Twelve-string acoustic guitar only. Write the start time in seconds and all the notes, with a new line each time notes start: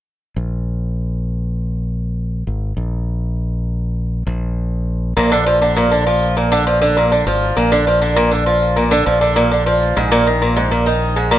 5.17 A#2
5.32 D3
5.46 F3
5.61 D3
5.76 A#2
5.91 D3
6.07 F3
6.37 A#2
6.52 D3
6.67 F3
6.81 D3
6.97 A#2
7.12 D3
7.27 F3
7.57 A#2
7.72 D3
7.87 F3
8.02 D3
8.16 A#2
8.31 D3
8.46 F3
8.76 A#2
8.91 D3
9.06 F3
9.21 D3
9.36 A#2
9.51 D3
9.66 F3
9.97 G#2
10.12 A#2
10.27 D#3
10.42 A#2
10.56 G#2
10.71 A#2
10.86 D#3
11.16 G#2
11.31 A#2